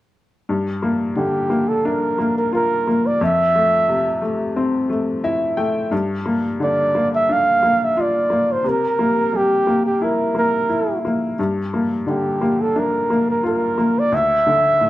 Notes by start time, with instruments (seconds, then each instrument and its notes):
0.49 upright piano G2
0.82 upright piano A#3
1.16 upright piano D3, flugelhorn G4
1.50 upright piano A#3
1.68 flugelhorn A4
1.85 upright piano D4, flugelhorn A#4
2.18 upright piano A#3
2.38 flugelhorn A#4
2.53 upright piano F4, flugelhorn A#4
2.87 upright piano A#3
3.06 flugelhorn D5
3.21 upright piano F2, flugelhorn E5
3.55 upright piano A3
3.89 upright piano C3
4.22 upright piano A3
4.56 upright piano C4
4.90 upright piano A3
5.24 upright piano E4 E5
5.57 upright piano A3 G5
5.91 upright piano G2
6.26 upright piano A#3
6.60 upright piano D3, flugelhorn D5
6.95 upright piano A#3
7.15 flugelhorn E5
7.29 upright piano D4, flugelhorn F5
7.63 upright piano A#3
7.84 flugelhorn E5
7.97 upright piano F4
8.01 flugelhorn D5
8.30 upright piano A#3
8.52 flugelhorn C5
8.64 upright piano C3
8.69 flugelhorn A#4
8.99 upright piano A#3
9.33 upright piano G3, flugelhorn G4
9.67 upright piano A#3
9.86 flugelhorn G4
10.02 upright piano E4, flugelhorn A#4
10.35 upright piano A#3, flugelhorn A#4
10.69 upright piano E4
11.05 upright piano A#3
11.39 upright piano G2
11.74 upright piano A#3
12.07 upright piano D3, flugelhorn G4
12.41 upright piano A#3
12.61 flugelhorn A4
12.76 upright piano D4, flugelhorn A#4
13.10 upright piano A#3
13.30 flugelhorn A#4
13.43 upright piano F4, flugelhorn A#4
13.78 upright piano A#3
13.99 flugelhorn D5
14.12 upright piano D2, flugelhorn E5
14.47 upright piano D3
14.81 upright piano A2